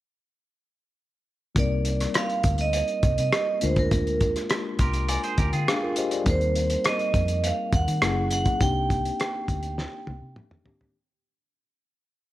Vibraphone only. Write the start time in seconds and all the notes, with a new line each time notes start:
1.59 D5
2.18 F5
2.61 D#5
3.19 D#5
3.64 C5
3.79 A#4
6.30 C5
6.87 D#5
7.46 F5
7.75 F#5
8.33 F#5
8.62 G5